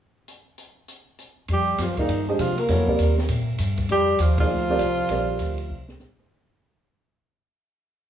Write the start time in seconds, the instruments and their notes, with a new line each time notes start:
0.28 closed hi-hat
0.58 closed hi-hat
0.88 closed hi-hat
1.18 closed hi-hat
1.48 upright bass F2, trombone G3, ride
1.53 alto saxophone G4
1.78 upright bass F#2, trombone F3, alto saxophone F4, snare, hi-hat pedal, ride
1.97 trombone D#3, grand piano A#3 D#4 G#4 D5 F5, alto saxophone D#4, kick, ride
2.08 upright bass G2, ride
2.28 grand piano G#3 D4 G4 C5 D#5
2.39 upright bass C3, trombone F3, alto saxophone F4, hi-hat pedal, ride
2.57 trombone A#3, alto saxophone A#4, ride
2.68 upright bass F2, grand piano F#3 B3 E4 A4 C#5, snare, ride
2.88 grand piano G3 C4 F4 A#4 D5, kick
2.99 upright bass D#2, hi-hat pedal, ride
3.18 snare
3.29 upright bass A#2, ride
3.58 upright bass G2, hi-hat pedal, ride
3.77 kick, ride
3.89 upright bass F2, trombone G3, alto saxophone G4, ride
4.19 upright bass D#2, trombone F3, alto saxophone F4, hi-hat pedal, ride
4.38 trombone F3, grand piano A#3 D#4 G#4 D5 F5, alto saxophone F4, kick, ride
4.49 upright bass D2
4.70 grand piano G3 C4 F4 A#4 D5
4.79 upright bass C2, hi-hat pedal, ride
5.09 upright bass A#1, grand piano G3 C4 F4 A#4 D5, ride
5.39 upright bass D2, hi-hat pedal, ride
5.58 ride
5.69 upright bass C2
5.88 snare
5.99 upright bass A#1, snare, hi-hat pedal
6.19 grand piano F3 A#3 D#4 G#4 C5, mid tom